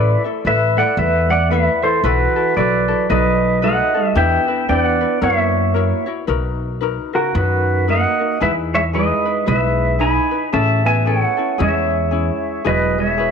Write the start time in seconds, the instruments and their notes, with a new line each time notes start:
Already playing: upright bass A1, steel-string acoustic guitar A3, ukulele E4 A4 B4 E5, pedal steel guitar B4 D5
0.24 ukulele E4 A4 E5
0.45 upright bass A1, steel-string acoustic guitar A3, ukulele E4 A4 B4 E5, pedal steel guitar B4 E5
0.77 steel-string acoustic guitar A3, ukulele E4 A4 E5, pedal steel guitar D5 F#5
0.97 upright bass E2, steel-string acoustic guitar A3, pedal steel guitar B4 E5
1.30 steel-string acoustic guitar A3, pedal steel guitar D5 F#5
1.50 steel-string acoustic guitar A3, ukulele E4 A4 B4 E5, pedal steel guitar B4 E5
1.82 steel-string acoustic guitar E3, ukulele E4 A4 E5, pedal steel guitar A4 C5
2.04 upright bass B1, steel-string acoustic guitar E3, ukulele E4 F#4 A4 B4, pedal steel guitar F#4 B4
2.36 ukulele E4 F#4 A4
2.56 upright bass B1, steel-string acoustic guitar F#3, ukulele E4 F#4 A4 B4, pedal steel guitar B4 D5
2.88 ukulele E4 F#4 A4
3.10 upright bass B1, steel-string acoustic guitar F#3, ukulele D#4 F#4 A4 B4, pedal steel guitar B4 D#5
3.62 steel-string acoustic guitar A3, ukulele D#4 F#4 A4 B4, pedal steel guitar D#5 F#5
3.94 ukulele D#4 F#4 A4
4.07 pedal steel guitar E5
4.15 upright bass E2, steel-string acoustic guitar B3, ukulele D4 E4 G4 B4, pedal steel guitar E5 G5
4.48 ukulele D4 E4 B4
4.69 upright bass E2, steel-string acoustic guitar B3, ukulele D4 E4 G4 B4, pedal steel guitar D5 G5
4.80 pedal steel guitar F#5
5.01 ukulele D4 E4 B4
5.21 upright bass F#2, steel-string acoustic guitar A#3, ukulele E4 F#4 A#4 C#5, pedal steel guitar C#5 E5
5.74 ukulele E4 F#4 A#4 C#5
6.06 ukulele E4 F#4 C#5
6.27 upright bass B1, ukulele D#4 F#4 A#4 B4
6.81 ukulele D#4 F#4 A#4 B4
7.13 steel-string acoustic guitar C#3, ukulele D#4 F#4 A#4, pedal steel guitar F#4 A#4
7.34 upright bass F#2, steel-string acoustic guitar D#3, ukulele D#4 F#4 B4, pedal steel guitar F#4 B4
7.87 steel-string acoustic guitar A#3, ukulele D#4 F#4 A#4 B4, pedal steel guitar D#5 F#5
8.19 ukulele D#4 F#4 A#4
8.40 upright bass E2, steel-string acoustic guitar G#3, ukulele D#4 E4 G#4 B4, pedal steel guitar B4 E5
8.74 steel-string acoustic guitar G#3, pedal steel guitar C#5 E5
8.93 steel-string acoustic guitar G#3, ukulele D#4 E4 G#4 B4, pedal steel guitar B4 D#5
9.25 ukulele D#4 E4 B4
9.46 upright bass B1, steel-string acoustic guitar G#3, ukulele E4 G#4 B4, pedal steel guitar B4 E5
9.99 ukulele D#4 E4 G#4 B4, steel-string acoustic guitar D#4, pedal steel guitar G#5 B5
10.31 ukulele D#4 E4 B4
10.53 upright bass A1, ukulele C#4 E4 G#4 A4, steel-string acoustic guitar C#4, pedal steel guitar E5 A5
10.85 steel-string acoustic guitar B3, pedal steel guitar E5 G#5
11.05 steel-string acoustic guitar A3, ukulele C#4 E4 G#4 A4, pedal steel guitar C#5 F#5
11.37 ukulele C#4 E4 A4
11.58 upright bass E2, steel-string acoustic guitar G#3, ukulele C#4 E4 G#4, pedal steel guitar E5
11.62 pedal steel guitar C#5
12.11 ukulele C#4 E4 G#4
12.65 upright bass E1, steel-string acoustic guitar F#3, ukulele E4 F#4 G#4 B4, pedal steel guitar B4 D#5
12.98 steel-string acoustic guitar G#3, pedal steel guitar C#5 E5
13.17 ukulele E4 F#4 G#4 B4